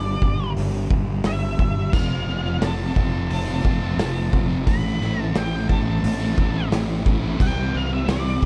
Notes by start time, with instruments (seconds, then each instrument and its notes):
Already playing: fingered electric bass G1, distorted electric guitar G2 D3 G3, lead electric guitar D5
0.22 fingered electric bass G1, distorted electric guitar G2 D3 G3, kick
0.38 distorted electric guitar D3 G3
0.57 fingered electric bass G1, open hi-hat
0.72 distorted electric guitar D3 G3
0.90 fingered electric bass G1, distorted electric guitar G2 D3 G3, kick
1.24 fingered electric bass G1, distorted electric guitar G2 D3, lead electric guitar E5, snare, open hi-hat
1.28 distorted electric guitar G3
1.58 fingered electric bass G1, distorted electric guitar G2 D3 G3, kick
1.76 distorted electric guitar D3 G3
1.91 fingered electric bass F1, distorted electric guitar F2 C3 F3, overdriven electric guitar F2 C3 F3 A3 C4 F4, lead electric guitar F5, kick, crash
2.26 fingered electric bass F1, distorted electric guitar F2 C3 F3, overdriven electric guitar F3 A3 C4
2.30 overdriven electric guitar F4
2.44 distorted electric guitar C3 F3, overdriven electric guitar F3 A3 C4 F4
2.60 fingered electric bass F1, distorted electric guitar F2 C3 F3, overdriven electric guitar F2 C3 F3 A3 C4, lead electric guitar A5, snare, open hi-hat
2.64 overdriven electric guitar F4
2.93 fingered electric bass F1, distorted electric guitar F2 C3 F3, overdriven electric guitar F3 A3 C4 F4, kick
3.10 distorted electric guitar C3 F3, overdriven electric guitar F3 A3 C4 F4
3.30 fingered electric bass F1, lead electric guitar A5, open hi-hat
3.46 distorted electric guitar F3, overdriven electric guitar F3 A3 C4 F4
3.50 distorted electric guitar C3
3.62 fingered electric bass F1, distorted electric guitar F2 C3, overdriven electric guitar F3 A3 C4 F4, kick
3.68 distorted electric guitar F3
3.80 overdriven electric guitar F3 A3 C4 F4
3.97 fingered electric bass F1, overdriven electric guitar F2 C3 F3 A3 C4 F4, distorted electric guitar F2 C3 F3, snare, open hi-hat
4.32 fingered electric bass F1, distorted electric guitar F2 C3 F3, kick
4.47 distorted electric guitar C3 F3, overdriven electric guitar F3 A3 C4 F4
4.65 fingered electric bass A1, distorted electric guitar A2 E3 A3, overdriven electric guitar A2 E3 A3 C4 E4, kick, open hi-hat
4.69 lead electric guitar B5
4.98 fingered electric bass A1, distorted electric guitar A2 E3 A3, overdriven electric guitar E3 A3, snare
5.02 overdriven electric guitar C4 E4
5.17 distorted electric guitar E3 A3, overdriven electric guitar A3 C4 E4
5.21 lead electric guitar A5
5.33 fingered electric bass A1, distorted electric guitar A2 E3 A3, overdriven electric guitar A2 E3 A3, snare, open hi-hat
5.37 overdriven electric guitar C4 E4, lead electric guitar G5
5.68 fingered electric bass A1, distorted electric guitar A2 E3 A3, overdriven electric guitar E3 A3 C4 E4, lead electric guitar A5, kick
5.84 distorted electric guitar E3 A3, overdriven electric guitar A3 C4 E4
6.04 fingered electric bass A1, open hi-hat
6.18 distorted electric guitar A3, overdriven electric guitar A3 C4 E4
6.23 distorted electric guitar E3
6.36 fingered electric bass A1, distorted electric guitar A2 E3, overdriven electric guitar E3 A3 C4 E4, kick
6.40 distorted electric guitar A3
6.53 overdriven electric guitar A3 C4 E4
6.70 fingered electric bass A1, overdriven electric guitar A2 E3 A3 C4 E4, distorted electric guitar A2 E3, snare, open hi-hat
6.75 distorted electric guitar A3
7.06 fingered electric bass A1, distorted electric guitar A2 E3 A3, kick
7.21 distorted electric guitar A3, overdriven electric guitar A3 C4 E4
7.27 distorted electric guitar E3
7.37 fingered electric bass C2, overdriven electric guitar C3 E3 G3 C4 E4, distorted electric guitar C3 G3, kick, crash
7.42 distorted electric guitar C4, lead electric guitar G5
7.72 fingered electric bass C2, distorted electric guitar C3 G3, overdriven electric guitar E3 G3 C4 E4
7.76 distorted electric guitar C4, lead electric guitar F5
7.89 overdriven electric guitar G3 C4 E4, distorted electric guitar G3 C4
7.93 lead electric guitar E5
8.06 fingered electric bass C2, overdriven electric guitar C3 E3 G3 C4 E4, distorted electric guitar C3 G3 C4, snare, open hi-hat
8.11 lead electric guitar D5
8.41 fingered electric bass C2, distorted electric guitar C3, overdriven electric guitar E3 G3